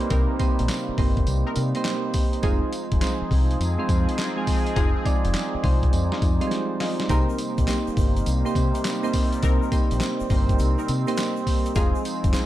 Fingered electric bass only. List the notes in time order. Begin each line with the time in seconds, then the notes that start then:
0.11 C2
0.60 A#1
0.89 muted fingered electric bass stroke
0.98 G1
1.27 C2
1.57 C3
2.43 F1
2.92 F1
3.22 muted fingered electric bass stroke
3.31 C2
3.60 F2
3.89 F2
4.77 F1
5.25 F1
5.55 muted fingered electric bass stroke
5.64 C2
5.93 F2
6.22 F2
7.10 C2
7.58 A#1
7.88 muted fingered electric bass stroke
7.97 G1
8.27 C2
8.56 C3
9.43 C2
9.92 A#1
10.21 muted fingered electric bass stroke
10.30 G1
10.60 C2
10.89 C3
11.76 F1
12.24 F1